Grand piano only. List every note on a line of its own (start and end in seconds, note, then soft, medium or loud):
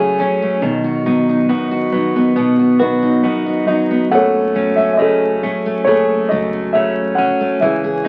2.80 4.09 D#4 soft
2.80 4.09 F#4 soft
2.80 3.71 B4 medium
3.67 4.13 D#5 medium
4.11 5.00 A4 soft
4.11 5.83 C#5 medium
4.11 4.80 F#5 medium
4.76 4.92 E5 medium
4.93 5.00 E5 medium
4.97 5.89 D#5 medium
5.02 5.87 G#4 soft
5.02 5.87 A4 soft
5.84 6.31 C#5 medium
5.89 7.59 G#4 medium
5.89 7.59 A4 medium
6.29 6.75 D#5 medium
6.73 7.15 E5 medium
7.15 7.62 F#5 medium
7.60 8.08 G#4 soft
7.60 8.08 E5 medium